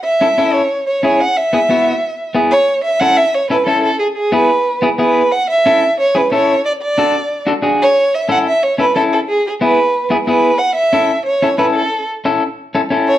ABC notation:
X:1
M:4/4
L:1/8
Q:1/4=182
K:A
V:1 name="Violin"
e3 c2 c2 f | e6 z c- | c e f e c B A A | G G B3 z B2 |
f e3 c B c2 | d d4 z2 c- | c e f e c B A A | G G B3 z B2 |
f e3 c2 B A- | A z6 c |]
V:2 name="Clean electric guitar"
z [CEA] [CEA] z3 [CEG] z | z [B,EG] [B,EF] z3 [B,EG] z | z2 [CEA] z2 [CEA] [CEA] z | z2 [B,EG] z2 [B,EG] [B,EG] z |
z2 [CEA] z2 [CEG] [CEA] z | z2 [DFA] z2 [DFA] [DFG] z | z2 [CEA] z2 [CEA] [CEA] z | z2 [B,EG] z2 [B,EG] [B,EG] z |
z2 [CEA] z2 [CEA] [CEA] z | z2 [CEA] z2 [CEA] [CEA] z |]